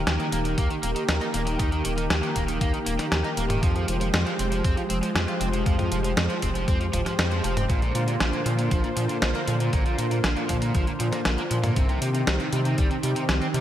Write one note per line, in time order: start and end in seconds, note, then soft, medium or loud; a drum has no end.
0.00 3.59 D#3 medium
0.00 3.59 A#3 medium
0.00 7.65 G4 medium
0.00 3.59 A#4 medium
0.07 0.18 D#2 loud
0.07 snare loud
0.07 closed hi-hat medium
0.20 0.26 D#3 medium
0.20 closed hi-hat soft
0.32 0.55 D#1 loud
0.32 0.39 A#3 medium
0.32 closed hi-hat medium
0.45 0.55 D#3 medium
0.45 closed hi-hat medium
0.58 0.69 D#2 loud
0.58 0.67 A#3 medium
0.58 kick loud
0.58 closed hi-hat medium
0.71 0.74 D#3 medium
0.71 closed hi-hat soft
0.83 0.95 D#1 medium
0.83 0.90 A#3 medium
0.83 closed hi-hat medium
0.96 1.02 D#3 medium
0.96 closed hi-hat medium
1.09 1.20 D#2 medium
1.09 snare loud
1.09 closed hi-hat medium
1.21 1.25 D#4 medium
1.21 closed hi-hat soft
1.34 1.57 D#1 medium
1.34 1.40 A#3 medium
1.34 closed hi-hat medium
1.47 1.56 D#3 medium
1.47 closed hi-hat medium
1.59 1.82 D#2 loud
1.59 1.69 D#3 medium
1.59 kick loud
1.59 closed hi-hat medium
1.72 1.82 D#3 medium
1.72 closed hi-hat soft
1.85 2.08 D#1 medium
1.85 1.91 D#3 loud
1.85 closed hi-hat loud
1.97 2.04 D#3 medium
1.97 closed hi-hat medium
2.10 2.22 D#2 loud
2.10 snare loud
2.10 closed hi-hat medium
2.23 2.29 D#3 medium
2.23 closed hi-hat soft
2.35 2.58 D#1 loud
2.35 2.42 A#3 medium
2.35 kick medium
2.35 closed hi-hat medium
2.48 2.58 D#3 medium
2.48 closed hi-hat medium
2.61 2.73 D#2 loud
2.61 2.70 A#3 medium
2.61 kick loud
2.61 closed hi-hat medium
2.74 2.78 D#3 medium
2.74 closed hi-hat soft
2.86 2.98 D#1 medium
2.86 2.93 A#3 medium
2.86 closed hi-hat loud
2.99 3.05 D#3 medium
2.99 snare soft
2.99 closed hi-hat medium
3.12 3.23 D#2 medium
3.12 snare loud
3.12 closed hi-hat medium
3.24 3.28 D#4 medium
3.24 closed hi-hat soft
3.37 3.60 D#1 medium
3.37 3.44 A#3 medium
3.37 closed hi-hat medium
3.50 3.60 D#3 medium
3.50 closed hi-hat medium
3.50 mid tom medium
3.62 3.86 F2 loud
3.62 7.65 F3 medium
3.62 3.72 F3 medium
3.62 7.65 G#3 medium
3.62 13.61 C5 medium
3.62 kick loud
3.62 closed hi-hat medium
3.76 3.85 F3 medium
3.76 closed hi-hat soft
3.88 4.11 F1 medium
3.88 3.95 F3 loud
3.88 closed hi-hat loud
4.01 4.07 F3 medium
4.01 closed hi-hat medium
4.14 4.25 F2 loud
4.14 snare loud
4.14 closed hi-hat medium
4.27 4.33 F3 medium
4.27 closed hi-hat soft
4.39 4.62 F1 loud
4.39 4.46 C4 medium
4.39 closed hi-hat loud
4.52 4.61 F3 medium
4.52 closed hi-hat medium
4.64 4.76 F2 loud
4.64 4.74 C4 medium
4.64 kick loud
4.64 closed hi-hat medium
4.77 4.81 F3 medium
4.77 closed hi-hat soft
4.90 5.01 F1 medium
4.90 4.96 C4 medium
4.90 closed hi-hat medium
5.03 5.09 F3 medium
5.03 closed hi-hat medium
5.15 5.27 F2 medium
5.15 snare loud
5.15 closed hi-hat medium
5.28 5.32 F4 medium
5.28 closed hi-hat soft
5.41 5.63 F1 medium
5.41 5.47 C4 medium
5.41 closed hi-hat medium
5.53 5.63 F3 medium
5.53 closed hi-hat medium
5.66 5.89 F2 loud
5.66 5.76 F3 medium
5.66 kick loud
5.66 closed hi-hat medium
5.79 5.89 F3 medium
5.79 closed hi-hat soft
5.79 mid tom medium
5.92 6.14 F1 medium
5.92 5.98 F3 loud
5.92 closed hi-hat medium
6.04 6.11 F3 medium
6.04 closed hi-hat medium
6.17 6.28 F2 loud
6.17 snare loud
6.17 closed hi-hat medium
6.30 6.36 F3 medium
6.30 closed hi-hat soft
6.42 6.65 F1 loud
6.42 6.49 C4 medium
6.42 kick medium
6.42 closed hi-hat medium
6.55 6.65 F3 medium
6.55 closed hi-hat soft
6.68 6.91 F2 medium
6.68 6.77 C4 medium
6.68 kick loud
6.68 closed hi-hat medium
6.81 6.85 F3 medium
6.81 closed hi-hat soft
6.93 7.05 F1 medium
6.93 7.00 F3 medium
6.93 kick medium
6.93 closed hi-hat medium
6.93 mid tom medium
7.06 7.12 F3 medium
7.06 snare soft
7.06 closed hi-hat soft
7.19 7.42 F2 medium
7.19 snare loud
7.19 closed hi-hat soft
7.32 7.41 F3 medium
7.32 closed hi-hat soft
7.44 7.67 F1 loud
7.44 7.54 F3 loud
7.44 closed hi-hat medium
7.57 7.63 C4 medium
7.57 closed hi-hat medium
7.57 mid tom medium
7.69 7.92 A#1 loud
7.69 7.79 A#2 medium
7.69 11.72 D3 medium
7.69 11.72 A#3 medium
7.69 11.72 F4 medium
7.69 kick loud
7.69 closed hi-hat soft
7.82 7.92 A#2 medium
7.82 closed hi-hat soft
7.95 8.18 A#2 medium
7.95 8.01 A#2 loud
7.95 closed hi-hat medium
8.08 8.14 A#2 medium
8.08 closed hi-hat medium
8.20 8.32 A#1 loud
8.20 snare loud
8.20 closed hi-hat medium
8.33 8.40 A#2 medium
8.33 closed hi-hat soft
8.46 8.69 A#2 loud
8.46 8.52 F3 medium
8.46 closed hi-hat medium
8.59 8.68 A#2 medium
8.59 closed hi-hat soft
8.71 8.83 A#1 loud
8.71 8.81 F3 medium
8.71 kick loud
8.71 closed hi-hat medium
8.84 8.88 A#2 medium
8.84 closed hi-hat soft
8.97 9.08 A#2 medium
8.97 9.03 F3 medium
8.97 closed hi-hat medium
9.09 9.16 A#2 medium
9.09 closed hi-hat soft
9.22 9.33 A#1 medium
9.22 snare loud
9.22 closed hi-hat soft
9.35 9.39 A#3 medium
9.35 closed hi-hat soft
9.48 9.70 A#2 loud
9.48 9.54 F3 medium
9.48 closed hi-hat medium
9.60 9.70 A#2 medium
9.60 closed hi-hat soft
9.73 9.96 A#1 loud
9.73 9.83 A#2 medium
9.73 kick loud
9.73 closed hi-hat medium
9.86 9.95 A#2 medium
9.86 closed hi-hat soft
9.98 10.05 A#2 loud
9.98 10.21 A#2 medium
9.98 closed hi-hat medium
10.11 10.17 A#2 medium
10.11 closed hi-hat soft
10.24 10.35 A#1 loud
10.24 snare loud
10.24 closed hi-hat soft
10.37 10.43 A#2 medium
10.37 closed hi-hat soft
10.49 10.72 A#2 loud
10.49 10.56 F3 medium
10.49 kick medium
10.49 closed hi-hat medium
10.62 10.72 A#2 medium
10.62 closed hi-hat soft
10.75 10.86 A#1 loud
10.75 10.84 F3 medium
10.75 kick loud
10.75 closed hi-hat medium
10.87 10.91 A#2 medium
10.87 closed hi-hat soft
11.00 11.12 A#2 medium
11.00 11.06 F3 medium
11.00 closed hi-hat medium
11.12 11.19 A#2 medium
11.12 snare soft
11.12 closed hi-hat medium
11.25 11.37 A#1 medium
11.25 snare loud
11.25 closed hi-hat soft
11.38 11.42 A#3 medium
11.38 closed hi-hat soft
11.51 11.74 A#2 loud
11.51 11.57 F3 medium
11.51 closed hi-hat medium
11.64 11.73 A#2 medium
11.64 closed hi-hat soft
11.64 mid tom loud
11.76 11.99 C2 loud
11.76 11.86 C3 medium
11.76 13.61 D#3 medium
11.76 13.61 C4 medium
11.76 13.61 G4 medium
11.76 kick loud
11.76 closed hi-hat medium
11.89 11.99 C3 medium
11.89 closed hi-hat soft
12.02 12.25 C3 medium
12.02 12.08 C3 loud
12.02 closed hi-hat medium
12.15 12.21 C3 medium
12.15 closed hi-hat medium
12.27 12.39 C2 loud
12.27 snare loud
12.27 closed hi-hat medium
12.40 12.46 C3 medium
12.40 closed hi-hat soft
12.53 12.75 C3 loud
12.53 12.59 G3 medium
12.53 closed hi-hat medium
12.65 12.75 C3 medium
12.65 closed hi-hat soft
12.78 12.90 C2 loud
12.78 12.88 G3 medium
12.78 kick loud
12.78 closed hi-hat medium
12.91 12.95 C3 medium
12.91 closed hi-hat soft
13.03 13.15 C3 medium
13.03 13.10 G3 medium
13.03 closed hi-hat medium
13.16 13.23 C3 medium
13.16 closed hi-hat medium
13.29 13.40 C2 medium
13.29 snare loud
13.29 closed hi-hat medium
13.42 13.45 C4 medium
13.42 closed hi-hat soft
13.54 13.61 C3 loud
13.54 13.61 G3 medium
13.54 closed hi-hat medium